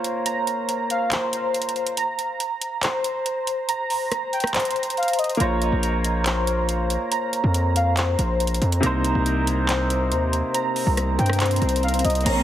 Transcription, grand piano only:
0, 0, Header, 1, 2, 480
1, 0, Start_track
1, 0, Tempo, 428571
1, 290, Time_signature, 4, 2, 24, 8
1, 13923, End_track
2, 0, Start_track
2, 0, Title_t, "Grand piano"
2, 0, Program_c, 0, 0
2, 0, Control_c, 0, 64, 127
2, 0, Note_on_c, 0, 58, 74
2, 0, Note_on_c, 0, 65, 77
2, 0, Note_on_c, 0, 72, 69
2, 0, Note_on_c, 0, 73, 94
2, 2149, Note_off_c, 0, 58, 0
2, 2160, Note_off_c, 0, 65, 0
2, 2171, Note_off_c, 0, 72, 0
2, 2181, Note_off_c, 0, 73, 0
2, 2223, Control_c, 0, 64, 0
2, 6015, Note_on_c, 0, 58, 76
2, 6038, Note_on_c, 0, 65, 75
2, 6060, Note_on_c, 0, 72, 70
2, 6081, Note_on_c, 0, 73, 91
2, 6262, Control_c, 0, 64, 127
2, 9828, Note_off_c, 0, 58, 0
2, 9839, Note_off_c, 0, 65, 0
2, 9850, Note_off_c, 0, 72, 0
2, 9860, Note_on_c, 0, 48, 83
2, 9861, Note_off_c, 0, 73, 0
2, 9882, Note_on_c, 0, 58, 78
2, 9904, Control_c, 0, 64, 0
2, 9904, Note_on_c, 0, 63, 76
2, 9926, Note_on_c, 0, 72, 92
2, 10127, Control_c, 0, 64, 127
2, 13670, Note_off_c, 0, 48, 0
2, 13681, Note_off_c, 0, 58, 0
2, 13692, Note_off_c, 0, 63, 0
2, 13703, Note_off_c, 0, 72, 0
2, 13742, Control_c, 0, 64, 0
2, 13923, End_track
0, 0, End_of_file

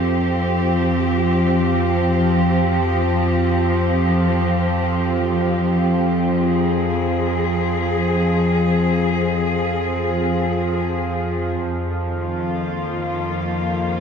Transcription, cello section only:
0, 0, Header, 1, 2, 480
1, 0, Start_track
1, 0, Key_signature, -4, "minor"
1, 0, Tempo, 500000
1, 13441, End_track
2, 0, Start_track
2, 0, Title_t, "Cello section"
2, 0, Program_c, 0, 48
2, 0, Note_on_c, 0, 53, 72
2, 0, Note_on_c, 0, 60, 77
2, 0, Note_on_c, 0, 67, 66
2, 6113, Note_on_c, 0, 68, 76
2, 6412, Note_off_c, 0, 67, 0
2, 11129, Note_off_c, 0, 68, 0
2, 11132, Note_off_c, 0, 53, 0
2, 11133, Note_off_c, 0, 60, 0
2, 11142, Note_on_c, 0, 41, 64
2, 11402, Note_on_c, 0, 51, 65
2, 11734, Note_on_c, 0, 65, 71
2, 12124, Note_on_c, 0, 58, 61
2, 13441, Note_off_c, 0, 41, 0
2, 13441, Note_off_c, 0, 51, 0
2, 13441, Note_off_c, 0, 58, 0
2, 13441, Note_off_c, 0, 65, 0
2, 13441, End_track
0, 0, End_of_file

